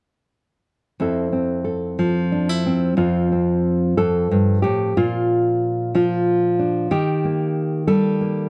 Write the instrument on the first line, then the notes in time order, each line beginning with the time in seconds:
nylon-string guitar
1.00 F2 C4 E4 A4
1.32 C4
1.64 A4
1.99 F3
2.32 D4
2.49 E4
2.66 C4
2.97 F2 F3 C4 F4
3.32 C4
3.97 F2 A4
4.31 G2
4.62 A2 G4
4.97 A#2 F4
5.95 F3 F4
6.59 D4
6.91 D#3 G4
7.25 A#3
7.87 G3 A4
8.21 A#3